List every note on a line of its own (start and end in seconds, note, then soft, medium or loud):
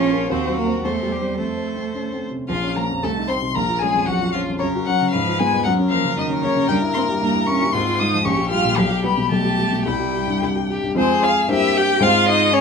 0.00 0.28 A#1 soft
0.00 0.23 F3 soft
0.00 0.29 C#4 medium
0.00 0.30 F4 medium
0.00 0.33 C#5 medium
0.12 0.28 F4 soft
0.12 0.28 A#4 soft
0.30 0.82 D#2 soft
0.30 0.59 C4 medium
0.30 0.87 F#4 soft
0.30 0.57 C5 medium
0.48 0.76 F#3 soft
0.57 0.83 A#3 medium
0.57 0.83 A#4 medium
0.66 0.82 C4 soft
0.66 0.82 C5 soft
0.83 1.37 E2 soft
0.83 1.13 A3 soft
0.83 1.14 A4 soft
0.83 1.39 C5 soft
1.02 1.31 G3 soft
1.11 1.39 G3 medium
1.11 1.38 G4 soft
1.21 1.37 C4 soft
1.21 1.37 C5 soft
1.38 2.47 F2 soft
1.38 2.21 A3 soft
1.38 2.20 A4 soft
1.38 2.27 C5 soft
1.57 1.87 C5 soft
1.76 2.05 C4 soft
1.94 2.12 C#4 soft
2.13 2.42 C4 soft
2.31 2.49 C3 soft
2.48 3.01 A#1 soft
2.48 2.56 F3 soft
2.48 2.74 F4 soft
2.48 2.77 F5 medium
2.63 2.84 C#4 soft
2.76 2.98 F3 soft
2.76 2.85 A#3 soft
2.76 2.84 A#4 soft
2.76 3.04 A#5 medium
2.90 3.03 F2 soft
3.03 3.54 C2 soft
3.03 3.28 A3 soft
3.03 3.12 A4 medium
3.03 3.30 A5 medium
3.17 3.38 D#4 soft
3.28 3.50 C4 soft
3.28 3.37 C4 soft
3.28 3.36 C5 medium
3.28 3.56 C6 medium
3.42 3.55 C3 soft
3.55 4.06 A#1 soft
3.55 3.63 A#3 soft
3.55 3.83 A#4 medium
3.55 3.81 A#5 medium
3.68 3.89 F4 soft
3.79 4.09 G#3 soft
3.79 4.03 C#4 soft
3.79 4.09 G#4 medium
3.79 4.07 G#5 medium
3.95 4.16 F2 soft
4.06 4.59 A#1 soft
4.06 4.33 F#3 soft
4.06 4.35 F#4 medium
4.06 4.32 F#5 medium
4.21 4.42 F4 soft
4.32 4.42 F3 medium
4.32 4.56 C#4 soft
4.32 4.60 F4 medium
4.32 4.40 F5 medium
4.49 4.62 F2 soft
4.59 5.13 F#2 soft
4.59 4.88 C#3 soft
4.59 5.14 A#4 soft
4.59 4.67 C#5 medium
4.76 4.96 F#4 soft
4.86 5.12 F#3 medium
4.86 5.09 C#4 soft
4.86 5.10 F#5 medium
5.01 5.14 C#3 soft
5.11 5.64 G#2 soft
5.11 5.42 F3 medium
5.11 5.65 B4 medium
5.11 5.41 F5 medium
5.28 5.48 F4 soft
5.39 5.68 G#3 medium
5.39 5.60 B3 soft
5.39 5.64 G#5 medium
5.53 5.66 G#3 soft
5.64 6.15 F#2 medium
5.64 5.91 F#3 medium
5.64 7.73 A#4 medium
5.64 5.72 F#5 medium
5.79 5.99 C#4 soft
5.89 6.17 F3 medium
5.89 6.12 A#3 soft
5.89 6.16 F5 medium
6.04 6.25 C#3 soft
6.17 6.67 F#2 soft
6.17 6.46 D#3 medium
6.17 6.26 D#5 medium
6.29 6.50 C#4 soft
6.43 6.69 C#3 medium
6.43 6.64 A#3 soft
6.43 6.68 C#5 medium
6.56 6.69 C#3 soft
6.68 7.21 G2 medium
6.68 6.78 G3 medium
6.68 6.76 G5 medium
6.82 7.03 E4 soft
6.94 7.16 A#3 soft
6.94 7.04 C4 medium
6.94 7.02 C6 medium
7.09 7.30 G3 soft
7.21 7.73 G2 soft
7.21 7.47 A#3 medium
7.21 7.48 A#5 medium
7.34 7.55 E4 soft
7.47 7.68 A#3 soft
7.47 7.73 C#4 medium
7.47 7.74 C#6 medium
7.62 7.74 G3 soft
7.73 8.24 G#2 medium
7.73 8.02 C4 medium
7.73 8.25 F4 medium
7.73 8.01 C6 medium
7.88 8.08 F4 soft
8.00 8.21 G#3 soft
8.00 8.24 D#4 medium
8.00 8.26 D#6 medium
8.14 8.26 F3 soft
8.25 8.75 A#1 medium
8.25 8.50 C#4 medium
8.25 9.88 G4 medium
8.25 8.49 C#6 medium
8.38 8.59 G4 soft
8.50 8.72 G3 soft
8.50 8.76 F4 medium
8.50 8.78 F6 medium
8.65 8.78 A#2 soft
8.77 9.30 B1 soft
8.77 8.85 F3 medium
8.77 9.04 F5 medium
8.91 9.12 G4 soft
9.03 9.26 G3 soft
9.03 9.11 B3 medium
9.03 9.31 B5 medium
9.18 9.39 B2 soft
9.31 9.85 B1 soft
9.31 9.88 A3 medium
9.31 9.85 A5 medium
9.45 9.67 G4 soft
9.58 9.81 G3 soft
9.72 9.86 B2 soft
9.86 10.40 C2 soft
9.86 10.70 G3 medium
9.86 10.37 E4 soft
9.86 10.68 G5 medium
9.99 10.22 G4 soft
10.13 10.36 G3 soft
10.27 10.50 G2 soft
10.42 10.95 C2 soft
10.42 10.50 E4 soft
10.56 10.78 G4 soft
10.70 10.92 G3 soft
10.70 10.97 G4 medium
10.84 10.97 G2 soft
10.95 11.47 F2 medium
10.95 11.47 G#3 soft
10.95 11.21 C4 medium
10.95 11.48 F4 soft
10.95 11.47 G#4 medium
10.95 11.48 C5 soft
10.95 11.25 C5 medium
11.23 11.31 F4 medium
11.23 11.50 F5 medium
11.48 12.00 G2 medium
11.48 12.00 A#3 soft
11.48 12.00 C4 soft
11.48 11.76 E4 medium
11.48 12.02 G4 medium
11.48 12.00 C5 soft
11.48 11.79 E5 medium
11.77 12.02 G4 medium
11.77 12.04 G5 medium
12.00 12.61 G#2 medium
12.00 12.61 G#3 soft
12.00 12.61 C4 medium
12.00 12.31 F4 medium
12.00 12.53 F4 medium
12.00 12.61 C5 soft
12.00 12.28 F5 loud
12.28 12.55 D#4 medium
12.28 12.55 D#5 loud
12.53 12.61 C#4 medium
12.53 12.61 G#4 medium
12.53 12.61 C#5 loud